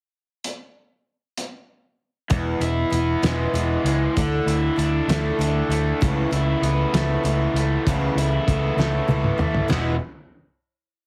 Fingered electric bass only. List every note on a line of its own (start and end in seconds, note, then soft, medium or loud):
2.31 2.53 E1 medium
2.60 2.83 E1 medium
2.92 3.14 E1 medium
3.22 3.45 E1 medium
3.53 3.76 E1 medium
3.84 4.06 C#2 medium
4.17 4.38 D2 medium
4.46 4.68 D2 medium
4.77 5.00 D2 medium
5.07 5.30 D2 medium
5.38 5.61 D2 medium
5.68 5.91 D2 medium
6.02 6.24 C#2 medium
6.31 6.54 C#2 medium
6.62 6.84 C#2 medium
6.93 7.15 C#2 medium
7.24 7.46 C#2 medium
7.53 7.76 C#2 medium
7.86 8.08 C#2 medium
8.15 8.37 C#2 medium
8.48 8.69 C#2 medium
8.76 8.98 C#2 medium
9.08 9.30 C#2 medium
9.37 9.59 D#2 medium
9.69 9.97 E1 medium